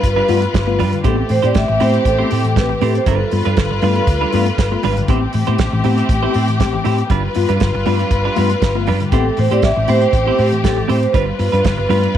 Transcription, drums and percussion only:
0.03 kick, closed hi-hat
0.28 open hi-hat
0.42 closed hi-hat
0.54 kick, snare, closed hi-hat
0.79 open hi-hat
0.93 closed hi-hat
1.04 kick, closed hi-hat
1.29 open hi-hat
1.43 closed hi-hat
1.54 kick, snare, closed hi-hat
1.80 open hi-hat
1.94 closed hi-hat
2.05 kick, closed hi-hat
2.31 open hi-hat
2.44 closed hi-hat
2.56 kick, snare, closed hi-hat
2.81 open hi-hat
2.95 closed hi-hat
3.06 kick, closed hi-hat
3.31 open hi-hat
3.46 closed hi-hat
3.57 kick, snare, closed hi-hat
3.82 open hi-hat
3.96 closed hi-hat
4.07 kick, closed hi-hat
4.32 open hi-hat
4.46 closed hi-hat
4.58 kick, snare, closed hi-hat
4.83 open hi-hat
4.97 closed hi-hat
5.08 kick, closed hi-hat
5.33 open hi-hat
5.47 closed hi-hat
5.58 kick, snare, closed hi-hat
5.84 open hi-hat
5.98 closed hi-hat
6.09 kick, closed hi-hat
6.34 open hi-hat
6.48 closed hi-hat
6.60 kick, snare, closed hi-hat
6.85 open hi-hat
6.98 closed hi-hat
7.10 kick, closed hi-hat
7.34 open hi-hat
7.49 closed hi-hat
7.60 kick, snare, closed hi-hat
7.86 open hi-hat
7.99 closed hi-hat
8.11 kick, closed hi-hat
8.36 open hi-hat
8.50 closed hi-hat
8.62 kick, snare, closed hi-hat
8.87 open hi-hat
9.00 closed hi-hat
9.12 kick, closed hi-hat
9.37 open hi-hat
9.51 closed hi-hat
9.62 kick, snare, closed hi-hat
9.88 open hi-hat
10.02 closed hi-hat
10.13 kick, closed hi-hat
10.38 open hi-hat
10.52 closed hi-hat
10.64 kick, snare, closed hi-hat
10.89 open hi-hat
11.03 closed hi-hat
11.14 kick, closed hi-hat
11.39 open hi-hat
11.54 closed hi-hat
11.64 kick, snare, closed hi-hat
11.90 open hi-hat
12.03 closed hi-hat

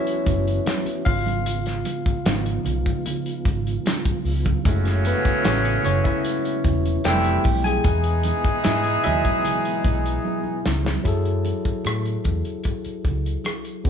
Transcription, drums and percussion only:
0.07 closed hi-hat
0.26 kick, closed hi-hat, muted conga, low conga
0.47 closed hi-hat
0.66 snare, closed hi-hat, high conga
0.86 closed hi-hat, high conga
1.06 kick, open hi-hat
1.26 closed hi-hat, high conga
1.46 closed hi-hat, muted conga
1.66 snare, closed hi-hat
1.85 closed hi-hat, muted conga
2.06 kick, closed hi-hat
2.26 snare, closed hi-hat, high conga
2.46 closed hi-hat
2.65 closed hi-hat, low conga
2.86 kick, closed hi-hat
3.06 closed hi-hat, low conga
3.26 closed hi-hat
3.45 kick, closed hi-hat, muted conga
3.67 closed hi-hat
3.86 snare, closed hi-hat, high conga
4.05 kick, closed hi-hat, high conga
4.25 open hi-hat
4.45 kick, closed hi-hat, high conga
4.65 kick, closed hi-hat
4.85 snare, closed hi-hat
5.05 closed hi-hat, muted conga
5.25 kick, closed hi-hat
5.45 snare, closed hi-hat, high conga
5.65 closed hi-hat
5.84 closed hi-hat, low conga
6.05 kick, closed hi-hat
6.25 closed hi-hat
6.45 closed hi-hat
6.64 kick, closed hi-hat, muted conga, low conga
6.86 closed hi-hat
7.04 snare, closed hi-hat, high conga
7.24 closed hi-hat, high conga
7.44 kick, open hi-hat
7.64 closed hi-hat, high conga
7.84 kick, closed hi-hat
8.04 closed hi-hat
8.23 closed hi-hat, muted conga
8.44 kick, closed hi-hat
8.64 snare, closed hi-hat, high conga
8.84 closed hi-hat
9.04 closed hi-hat, low conga
9.25 kick, closed hi-hat
9.45 closed hi-hat, low conga
9.65 closed hi-hat
9.85 kick, closed hi-hat, muted conga
10.06 closed hi-hat
10.25 high conga
10.44 high conga
10.66 snare
10.85 snare, high conga
11.04 kick, closed hi-hat, muted conga
11.25 closed hi-hat
11.45 closed hi-hat, muted conga
11.65 kick, closed hi-hat
11.85 cross-stick, closed hi-hat, high conga
12.05 closed hi-hat
12.24 kick, closed hi-hat, low conga
12.45 closed hi-hat
12.64 kick, closed hi-hat
12.85 closed hi-hat
13.05 kick, closed hi-hat, muted conga, low conga
13.26 closed hi-hat
13.44 cross-stick, closed hi-hat, high conga
13.65 closed hi-hat
13.85 kick, closed hi-hat

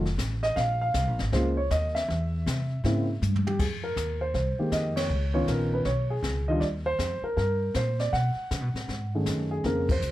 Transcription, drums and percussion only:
0.05 snare
0.18 kick, snare, hi-hat pedal
0.43 snare
0.56 brush sweep, kick, snare
0.94 kick, snare, hi-hat pedal
1.19 snare
1.32 brush sweep, kick, snare
1.71 kick, snare, hi-hat pedal
1.96 snare
2.09 brush sweep, kick, snare
2.47 kick, snare, hi-hat pedal
2.84 brush sweep, kick, snare
3.22 hi-hat pedal, high tom
3.36 floor tom
3.47 floor tom
3.59 brush sweep, kick, snare, crash
3.97 kick, snare, hi-hat pedal
4.34 brush sweep, kick, snare
4.72 kick, snare, hi-hat pedal
4.97 snare, ride
5.11 brush sweep
5.48 kick, snare, hi-hat pedal
5.85 brush sweep, kick, snare
6.23 kick, snare, hi-hat pedal
6.61 brush sweep, kick, snare
6.99 kick, snare, hi-hat pedal
7.37 brush sweep, kick, snare
7.74 kick, snare, hi-hat pedal
7.99 snare
8.13 brush sweep, kick, snare
8.51 kick, snare, hi-hat pedal
8.76 snare
8.89 brush sweep, kick, snare
9.26 kick, snare, hi-hat pedal
9.64 brush sweep, kick, snare
9.89 kick, ride
10.02 hi-hat pedal

